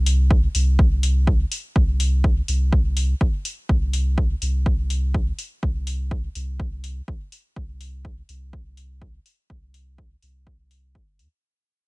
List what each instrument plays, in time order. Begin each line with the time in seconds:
Already playing: sub bass C2
0.06 open hi-hat
0.31 kick
0.55 sub bass C2, open hi-hat
0.79 kick
1.03 open hi-hat
1.27 kick
1.52 open hi-hat
1.76 sub bass C2, kick
2.00 open hi-hat
2.24 kick
2.48 sub bass C2, open hi-hat
2.73 kick
2.97 open hi-hat
3.21 sub bass A#1, kick
3.45 open hi-hat
3.69 sub bass C2, kick
3.93 open hi-hat
4.18 kick
4.42 sub bass C2, open hi-hat
4.66 kick
4.90 open hi-hat
5.14 kick
5.39 open hi-hat
5.63 sub bass C2, kick
5.87 open hi-hat
6.11 kick
6.35 sub bass C2, open hi-hat
6.60 kick
6.84 open hi-hat
7.08 sub bass A#1, kick
7.32 open hi-hat
7.56 sub bass C2, kick
7.81 open hi-hat
8.05 kick
8.29 sub bass C2, open hi-hat
8.53 kick
8.77 open hi-hat
9.02 kick
9.26 open hi-hat
9.50 sub bass C2, kick
9.74 open hi-hat
9.98 kick
10.22 sub bass C2, open hi-hat
10.47 kick
10.71 open hi-hat
10.95 sub bass G1, kick
11.19 sub bass D#2, open hi-hat